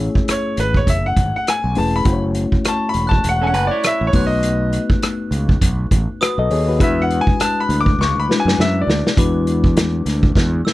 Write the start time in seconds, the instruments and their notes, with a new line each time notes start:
Already playing: reed electric piano A3 C#4 E4 G#4 C#5
0.15 muted fingered electric bass stroke, kick
0.28 grand piano C#5, cross-stick, closed hi-hat
0.57 fingered electric bass G#1, grand piano B4, cross-stick, closed hi-hat
0.74 grand piano C#5, kick
0.87 fingered electric bass F#1, grand piano E5, kick, closed hi-hat
1.06 grand piano F#5
1.17 fingered electric bass G#1, kick, closed hi-hat
1.36 grand piano F#5
1.47 grand piano G#5, cross-stick, closed hi-hat
1.64 fingered electric bass B1
1.75 fingered electric bass E1, reed electric piano A3 C#4 E4 G#4 B4, grand piano A5, open hi-hat
1.96 grand piano B5
2.05 fingered electric bass F#1, reed electric piano A3 C#4 E4 F#4 C5, kick, closed hi-hat
2.13 reed electric piano C#5
2.35 closed hi-hat
2.52 muted fingered electric bass stroke, kick
2.65 grand piano A5, glockenspiel C#6, cross-stick, closed hi-hat
2.89 grand piano B5
2.94 fingered electric bass E1, closed hi-hat
3.07 grand piano A5, glockenspiel F#6
3.11 kick
3.24 fingered electric bass E1, closed hi-hat
3.29 grand piano F#5
3.42 clean electric guitar C#4 A4, grand piano G#5
3.47 grand piano F#5
3.54 fingered electric bass F#1, clean electric guitar B4, closed hi-hat
3.67 grand piano D5
3.71 clean electric guitar E4 C#5
3.83 grand piano E5, cross-stick, closed hi-hat
4.01 fingered electric bass A1
4.07 grand piano C#5
4.13 fingered electric bass B1, reed electric piano A3 B3 D#4 F#4 B4, glockenspiel F#6, kick, open hi-hat
4.27 grand piano D#5
4.43 closed hi-hat
4.73 closed hi-hat
4.90 muted fingered electric bass stroke, kick
5.02 cross-stick, closed hi-hat
5.31 fingered electric bass C#2, closed hi-hat
5.49 kick
5.61 fingered electric bass B1, kick, closed hi-hat
5.91 fingered electric bass A1, kick, closed hi-hat
6.21 reed electric piano F#4 B4, glockenspiel D#6, cross-stick, closed hi-hat
6.38 fingered electric bass B1, reed electric piano A4 D#5
6.50 fingered electric bass D#2, reed electric piano G#4 C#5, open hi-hat
6.68 reed electric piano F#4 B4
6.79 fingered electric bass E2, reed electric piano G#3 D4 E4 F#4 B4, kick, closed hi-hat
6.83 grand piano E5
7.02 grand piano F#5
7.10 closed hi-hat
7.21 grand piano G#5
7.27 muted fingered electric bass stroke, kick
7.40 grand piano A5, glockenspiel F#6, cross-stick, closed hi-hat
7.60 grand piano B5
7.69 fingered electric bass D2, closed hi-hat
7.81 grand piano D6
7.86 kick
7.99 fingered electric bass C#2, grand piano C#6, snare
8.16 fingered electric bass D2
8.20 grand piano B5
8.29 reed electric piano G#3 D4 E4 F#4 B4, snare
8.40 grand piano G#5
8.45 fingered electric bass F#2, snare
8.58 fingered electric bass F#2, grand piano E5, snare
8.81 grand piano D5
8.87 fingered electric bass D2, snare
9.07 snare
9.17 fingered electric bass E2, reed electric piano G#3 D4 E4 F#4 B4, glockenspiel D6, kick, closed hi-hat
9.47 closed hi-hat
9.64 kick
9.77 snare, closed hi-hat
10.06 fingered electric bass D2, snare, closed hi-hat
10.23 kick
10.35 fingered electric bass E2, kick, snare
10.65 glockenspiel E6, snare